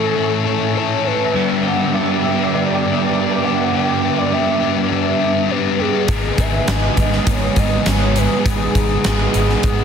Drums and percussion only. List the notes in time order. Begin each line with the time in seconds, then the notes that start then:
6.08 kick, closed hi-hat
6.38 kick, closed hi-hat
6.68 snare, closed hi-hat
6.97 kick, closed hi-hat
7.12 snare
7.27 kick, closed hi-hat
7.56 kick, closed hi-hat
7.86 snare, closed hi-hat
8.16 closed hi-hat
8.46 kick, closed hi-hat
8.75 kick, closed hi-hat
9.04 snare, closed hi-hat
9.34 closed hi-hat
9.49 snare
9.63 kick, closed hi-hat